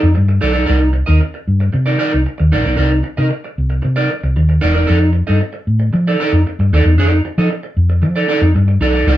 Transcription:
0.02 fingered electric bass F2, muted clean electric guitar stroke
0.14 fingered electric bass G2, muted clean electric guitar stroke
0.28 muted clean electric guitar stroke
0.41 fingered electric bass B1, clean electric guitar D#4 A4 D5
0.53 clean electric guitar D#4 A4 D5
0.66 fingered electric bass C2, clean electric guitar D#4 A#4 D5
0.80 muted clean electric guitar stroke
0.93 muted clean electric guitar stroke
1.06 fingered electric bass D#2, clean electric guitar D#4 A#4 D#5
1.21 muted clean electric guitar stroke
1.34 muted clean electric guitar stroke
1.48 fingered electric bass G2
1.60 muted clean electric guitar stroke
1.73 fingered electric bass C3, muted clean electric guitar stroke
1.86 clean electric guitar D#4 A#4 D5
1.99 clean electric guitar D#4 A#4 D5
2.13 fingered electric bass C2, muted clean electric guitar stroke
2.26 muted clean electric guitar stroke
2.38 fingered electric bass D#2, muted clean electric guitar stroke
2.52 fingered electric bass A#1, clean electric guitar D#4 A#4 D5
2.65 fingered electric bass B1, clean electric guitar D#4 A#4 D5
2.76 fingered electric bass C2, clean electric guitar D#4 A#4 D5
2.90 muted clean electric guitar stroke
3.03 muted clean electric guitar stroke
3.17 fingered electric bass C3, clean electric guitar D#4 A#4 D#5
3.30 muted clean electric guitar stroke
3.44 muted clean electric guitar stroke
3.58 fingered electric bass C2
3.70 muted clean electric guitar stroke
3.82 fingered electric bass C3, muted clean electric guitar stroke
3.96 clean electric guitar D#4 A#4 D5
4.11 muted clean electric guitar stroke
4.23 fingered electric bass C2, muted clean electric guitar stroke
4.36 fingered electric bass D#2, muted clean electric guitar stroke
4.49 muted clean electric guitar stroke
4.61 fingered electric bass E1, clean electric guitar D#4 A#4 D5
4.74 clean electric guitar D#4 A#4 D5
4.87 fingered electric bass F2, clean electric guitar D#4 A4 D5
5.00 muted clean electric guitar stroke
5.13 muted clean electric guitar stroke
5.27 fingered electric bass G2, clean electric guitar D#4 A4 D#5
5.40 muted clean electric guitar stroke
5.53 muted clean electric guitar stroke
5.67 fingered electric bass A2
5.80 muted clean electric guitar stroke
5.93 fingered electric bass F3, muted clean electric guitar stroke
6.07 clean electric guitar D#4 A4 D5
6.20 clean electric guitar D#4 A4 D5
6.33 fingered electric bass F2, muted clean electric guitar stroke
6.47 muted clean electric guitar stroke
6.59 fingered electric bass G2, muted clean electric guitar stroke
6.72 fingered electric bass D#2, clean electric guitar D#4 A4 D5
6.85 fingered electric bass E2, muted clean electric guitar stroke
6.98 fingered electric bass F2, clean electric guitar D#4 A4 D5
7.12 muted clean electric guitar stroke
7.25 muted clean electric guitar stroke
7.38 fingered electric bass F3, clean electric guitar D#4 A4 D#5
7.50 muted clean electric guitar stroke
7.63 muted clean electric guitar stroke
7.76 fingered electric bass F2
7.90 muted clean electric guitar stroke
8.02 fingered electric bass F3, muted clean electric guitar stroke
8.16 clean electric guitar D#4 A4 D5
8.28 clean electric guitar D#4 A4 D5
8.41 fingered electric bass F2, muted clean electric guitar stroke
8.54 fingered electric bass G2, muted clean electric guitar stroke
8.68 muted clean electric guitar stroke
8.80 fingered electric bass B1, clean electric guitar D#4 A4 D5
8.95 clean electric guitar D#4 A4 D5
9.07 fingered electric bass C2, clean electric guitar D#4 A#4 D5

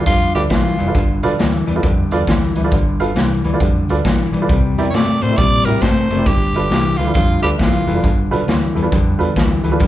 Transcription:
0.06 fingered electric bass F2, clean electric guitar G2 D3, tenor saxophone F4, kick, closed hi-hat
0.35 fingered electric bass D2, honky-tonk piano F4 A4 B4 D5, tenor saxophone G4, closed hi-hat
0.50 fingered electric bass B1, clean electric guitar G2 E3, tenor saxophone F4, kick, snare, closed hi-hat
0.78 fingered electric bass F1, clean electric guitar G2 E3, honky-tonk piano B4 D5, closed hi-hat
0.88 honky-tonk piano F4 A4 B4 D5
0.94 fingered electric bass G1, clean electric guitar G2 D3, kick, closed hi-hat
1.23 fingered electric bass B1, honky-tonk piano F4 A4 B4 D5, closed hi-hat
1.39 fingered electric bass D2, clean electric guitar G2 E3, snare, closed hi-hat
1.67 fingered electric bass E2, clean electric guitar G2 E3, honky-tonk piano B4 D5, closed hi-hat
1.76 honky-tonk piano F4 A4 B4 D5
1.83 fingered electric bass F2, clean electric guitar G2 D3, kick, closed hi-hat
2.11 fingered electric bass E2, honky-tonk piano F4 A4 B4 D5, closed hi-hat
2.27 fingered electric bass D2, clean electric guitar G2 E3, kick, snare, closed hi-hat
2.56 fingered electric bass D2, clean electric guitar G2 E3, honky-tonk piano B4 E5, closed hi-hat
2.64 honky-tonk piano F4 A4 B4 D5
2.71 fingered electric bass G1, clean electric guitar G2 D3, kick, closed hi-hat
2.99 fingered electric bass G1, honky-tonk piano F4 A4 B4 F5, closed hi-hat
3.15 fingered electric bass C2, clean electric guitar G2 E3, snare, closed hi-hat
3.44 fingered electric bass D2, clean electric guitar G2 E3, honky-tonk piano B4 D5, closed hi-hat
3.53 honky-tonk piano F4 A4 B4 D5
3.60 fingered electric bass F2, clean electric guitar G2 D3, kick, closed hi-hat
3.88 fingered electric bass D2, honky-tonk piano F4 A4 B4 D5, closed hi-hat
4.04 fingered electric bass B1, clean electric guitar G2 E3, kick, snare, closed hi-hat
4.32 fingered electric bass B1, clean electric guitar G2 E3, honky-tonk piano B4 D5, closed hi-hat
4.42 honky-tonk piano F4 A4 B4 D5
4.48 fingered electric bass C2, clean electric guitar C3 G3, kick, closed hi-hat
4.76 fingered electric bass E2, honky-tonk piano E4 G4 A#4 D5, closed hi-hat
4.90 fingered electric bass G2, clean electric guitar C3 A3, tenor saxophone C#5, closed hi-hat
4.95 tenor saxophone D5, snare
5.22 fingered electric bass A2, clean electric guitar C3 A3, honky-tonk piano A#4 D5, tenor saxophone C5, closed hi-hat
5.30 honky-tonk piano E4 G4 A#4 E5
5.37 fingered electric bass A#2, clean electric guitar C3 G3, tenor saxophone D5, kick, closed hi-hat
5.65 fingered electric bass A2, honky-tonk piano E4 G4 A#4 E5, tenor saxophone A#4, closed hi-hat
5.81 fingered electric bass G2, clean electric guitar C3 A3, tenor saxophone C5, kick, snare, closed hi-hat
6.10 fingered electric bass F#1, clean electric guitar C3 A3, honky-tonk piano A#4 D5, closed hi-hat
6.19 honky-tonk piano E4 G4 A#4 D5
6.26 fingered electric bass G1, clean electric guitar G2 D3, tenor saxophone G4, kick, closed hi-hat
6.54 fingered electric bass G1, honky-tonk piano D4 F4 A4 B4, closed hi-hat
6.70 fingered electric bass C2, clean electric guitar G2 E3, snare, closed hi-hat
6.97 fingered electric bass D2, clean electric guitar G2 E3, tenor saxophone F4, honky-tonk piano A4 B4, closed hi-hat
7.07 honky-tonk piano D4 F4 A4 B4
7.14 fingered electric bass F2, clean electric guitar G2 D3, tenor saxophone F4, kick, closed hi-hat
7.42 fingered electric bass D2, honky-tonk piano D4 F4 A4 B4, tenor saxophone G4, closed hi-hat
7.58 fingered electric bass B1, clean electric guitar G2 E3, tenor saxophone F4, kick, snare, closed hi-hat
7.86 fingered electric bass F1, clean electric guitar G2 E3, honky-tonk piano A4 B4, closed hi-hat
7.95 honky-tonk piano D4 F4 A4 B4
8.02 fingered electric bass G1, clean electric guitar G2 D3, kick, closed hi-hat
8.31 fingered electric bass B1, honky-tonk piano D4 F4 A4 B4, closed hi-hat
8.47 fingered electric bass D2, clean electric guitar G2 E3, snare, closed hi-hat
8.75 fingered electric bass E2, clean electric guitar G2 E3, honky-tonk piano A4 B4, closed hi-hat
8.83 honky-tonk piano D4 F4 A4 B4
8.92 fingered electric bass F2, clean electric guitar G2 D3, kick, closed hi-hat
9.19 fingered electric bass E2, honky-tonk piano D4 F4 A4 B4, closed hi-hat
9.36 fingered electric bass D2, clean electric guitar G2 E3, kick, snare, closed hi-hat
9.63 fingered electric bass D2, clean electric guitar G2 E3, honky-tonk piano A4 B4, closed hi-hat
9.71 honky-tonk piano D4 F4 A4 B4
9.80 fingered electric bass G1, clean electric guitar G2 D3, kick, closed hi-hat

